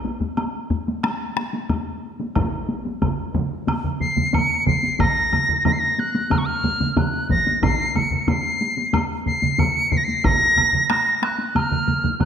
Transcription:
0.05 taiko high medium
0.20 taiko low-mid medium
0.20 taiko high medium
0.37 taiko high medium
0.37 high woodblock soft
0.70 taiko low-mid medium
0.70 taiko high medium
0.88 taiko high medium
1.03 taiko rim medium
1.03 taiko high medium
1.03 high woodblock soft
1.36 taiko rim medium
1.36 taiko high medium
1.53 taiko high medium
1.69 taiko low-mid medium
1.69 taiko high medium
1.69 high woodblock soft
2.20 taiko high medium
2.35 taiko loud
2.35 taiko low-mid medium
2.35 taiko mid medium
2.35 taiko high medium
2.35 high woodblock soft
2.69 taiko high medium
2.85 taiko high medium
3.02 taiko medium
3.02 taiko low-mid loud
3.02 taiko mid medium
3.02 taiko high medium
3.02 high woodblock soft
3.34 taiko low-mid medium
3.34 taiko mid medium
3.34 taiko high medium
3.67 taiko low-mid medium
3.67 taiko mid medium
3.67 taiko high medium
3.67 high woodblock medium
3.84 taiko low-mid medium
3.84 taiko mid medium
4.00 4.36 C7 medium
4.00 taiko low-mid medium
4.00 taiko mid medium
4.00 taiko high medium
4.17 taiko low-mid medium
4.17 taiko mid medium
4.17 taiko high medium
4.33 4.67 C#7 medium
4.33 taiko low-mid medium
4.33 taiko mid medium
4.33 taiko high medium
4.33 high woodblock soft
4.66 5.02 C7 medium
4.66 taiko medium
4.66 taiko low-mid medium
4.66 taiko mid loud
4.66 taiko high soft
4.83 taiko high medium
4.99 5.66 A#6 medium
4.99 taiko medium
4.99 taiko low-mid medium
4.99 taiko mid medium
4.99 taiko high medium
4.99 high woodblock medium
5.32 taiko low-mid medium
5.32 taiko mid medium
5.32 taiko high medium
5.32 high woodblock soft
5.49 taiko low-mid medium
5.49 taiko mid medium
5.65 5.74 A#6 medium
5.65 taiko low-mid medium
5.65 taiko mid loud
5.65 taiko high medium
5.65 high woodblock soft
5.73 5.81 C7 medium
5.79 6.01 A#6 medium
5.98 6.34 F#6 medium
5.98 taiko high medium
6.15 taiko high medium
6.30 6.40 F6 medium
6.30 taiko low-mid medium
6.30 taiko mid medium
6.30 taiko high medium
6.30 high woodblock medium
6.38 6.47 C#6 medium
6.46 6.97 F6 medium
6.64 taiko low-mid medium
6.64 taiko mid medium
6.64 taiko high medium
6.80 taiko low-mid medium
6.80 taiko mid medium
6.80 taiko high medium
6.97 7.28 F#6 medium
6.97 taiko low-mid loud
6.97 taiko mid loud
6.97 taiko high medium
6.97 high woodblock soft
7.29 7.65 A#6 medium
7.29 taiko medium
7.29 taiko low-mid medium
7.29 taiko mid medium
7.29 taiko high medium
7.47 taiko high medium
7.62 7.98 C7 medium
7.62 taiko loud
7.62 taiko low-mid medium
7.62 taiko mid medium
7.62 taiko high medium
7.62 high woodblock medium
7.95 8.30 C#7 medium
7.95 taiko low-mid medium
7.95 taiko mid medium
7.95 taiko high medium
7.95 high woodblock soft
8.11 taiko low-mid medium
8.11 taiko mid medium
8.27 9.02 C7 medium
8.27 taiko low-mid medium
8.27 taiko mid loud
8.27 taiko high medium
8.27 high woodblock soft
8.61 taiko high medium
8.77 taiko high medium
8.93 taiko low-mid medium
8.93 taiko mid medium
8.93 taiko high medium
8.93 high woodblock medium
9.26 9.61 C7 medium
9.26 taiko low-mid medium
9.26 taiko mid medium
9.26 taiko high medium
9.42 taiko low-mid medium
9.42 taiko mid medium
9.42 taiko high soft
9.58 9.93 C#7 medium
9.58 taiko low-mid loud
9.58 taiko mid medium
9.58 taiko high medium
9.58 high woodblock soft
9.92 9.99 C7 medium
9.92 taiko low-mid medium
9.92 taiko mid medium
9.92 taiko high soft
9.97 10.06 A#6 medium
10.04 10.27 C7 medium
10.04 taiko high soft
10.24 10.89 A#6 loud
10.24 taiko loud
10.24 taiko low-mid medium
10.24 taiko mid loud
10.24 taiko high medium
10.24 high woodblock soft
10.56 taiko low-mid medium
10.56 taiko mid medium
10.56 taiko high soft
10.56 high woodblock soft
10.73 taiko low-mid medium
10.73 taiko mid medium
10.90 11.25 A#6 medium
10.90 taiko rim medium
10.90 taiko high medium
10.90 high woodblock soft
11.23 11.49 F#6 medium
11.23 taiko rim medium
11.23 taiko high soft
11.38 taiko high soft
11.49 11.58 F#6 medium
11.55 12.20 F6 medium
11.55 taiko low-mid medium
11.55 taiko mid medium
11.55 taiko high medium
11.55 high woodblock medium
11.72 taiko low-mid medium
11.72 taiko mid medium
11.87 taiko low-mid medium
11.87 taiko mid medium
11.87 taiko high soft
12.04 taiko low-mid medium
12.04 taiko mid medium
12.04 taiko high soft
12.20 12.25 F#6 medium
12.20 taiko low-mid medium
12.20 taiko mid loud
12.20 taiko high medium
12.20 high woodblock soft

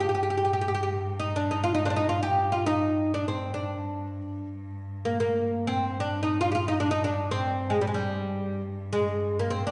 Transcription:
0.00 4.29 G2 medium
0.00 0.06 G4 medium
0.09 0.13 G4 medium
0.15 0.21 G4 medium
0.23 0.29 G4 medium
0.30 0.36 G4 medium
0.37 0.43 G4 medium
0.45 0.51 G4 medium
0.53 0.59 G4 medium
0.61 0.67 G4 medium
0.68 0.73 G4 medium
0.75 0.81 G4 medium
0.83 0.89 G4 medium
1.20 1.36 D#4 medium
1.36 1.50 D4 medium
1.51 1.63 D#4 medium
1.64 1.74 F4 medium
1.75 1.85 D#4 medium
1.85 1.90 C4 medium
1.85 1.88 D4 medium
1.90 1.96 D4 medium
1.96 2.09 D#4 medium
2.09 2.22 F4 medium
2.23 2.49 G4 medium
2.52 2.66 F4 medium
2.66 3.14 D#4 medium
3.14 3.26 D4 medium
3.28 3.54 C4 medium
3.54 4.48 D4 medium
4.30 9.01 G2 medium
5.05 5.19 A#3 medium
5.20 5.67 A#3 medium
5.67 6.00 C4 medium
6.00 6.22 D4 medium
6.23 6.39 D#4 medium
6.41 6.51 F4 medium
6.52 6.68 F4 medium
6.52 6.54 G4 medium
6.68 6.80 D#4 medium
6.80 6.91 D4 medium
6.91 7.04 D#4 medium
7.04 7.31 D4 medium
7.31 7.70 C4 medium
7.70 7.81 G#3 medium
7.81 7.87 G3 medium
7.87 7.95 G#3 medium
7.94 8.61 G3 medium
8.93 9.39 G#3 medium
9.02 9.71 G2 medium
9.39 9.51 A#3 medium
9.50 9.66 C4 medium
9.67 9.71 D4 medium

